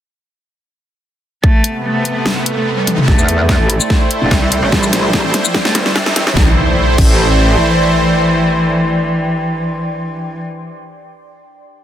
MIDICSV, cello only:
0, 0, Header, 1, 2, 480
1, 0, Start_track
1, 0, Key_signature, 0, "minor"
1, 0, Tempo, 410959
1, 1677, Time_signature, 4, 2, 24, 8
1, 3596, Key_signature, 0, "minor"
1, 13828, End_track
2, 0, Start_track
2, 0, Title_t, "Cello"
2, 0, Program_c, 0, 42
2, 1678, Note_on_c, 0, 57, 94
2, 2060, Note_off_c, 0, 57, 0
2, 2157, Note_on_c, 0, 57, 88
2, 2540, Note_off_c, 0, 57, 0
2, 3000, Note_on_c, 0, 57, 86
2, 3188, Note_off_c, 0, 57, 0
2, 3240, Note_on_c, 0, 55, 89
2, 3523, Note_off_c, 0, 55, 0
2, 3595, Note_on_c, 0, 57, 97
2, 3979, Note_off_c, 0, 57, 0
2, 4074, Note_on_c, 0, 57, 91
2, 4458, Note_off_c, 0, 57, 0
2, 4919, Note_on_c, 0, 57, 90
2, 5107, Note_off_c, 0, 57, 0
2, 5159, Note_on_c, 0, 55, 90
2, 5443, Note_off_c, 0, 55, 0
2, 5514, Note_on_c, 0, 55, 98
2, 5898, Note_off_c, 0, 55, 0
2, 6360, Note_on_c, 0, 53, 88
2, 6548, Note_off_c, 0, 53, 0
2, 6602, Note_on_c, 0, 57, 89
2, 6789, Note_off_c, 0, 57, 0
2, 6842, Note_on_c, 0, 55, 97
2, 7124, Note_off_c, 0, 55, 0
2, 7196, Note_on_c, 0, 52, 94
2, 7388, Note_off_c, 0, 52, 0
2, 7436, Note_on_c, 0, 52, 95
2, 7574, Note_off_c, 0, 52, 0
2, 8156, Note_on_c, 0, 52, 107
2, 12164, Note_off_c, 0, 52, 0
2, 13828, End_track
0, 0, End_of_file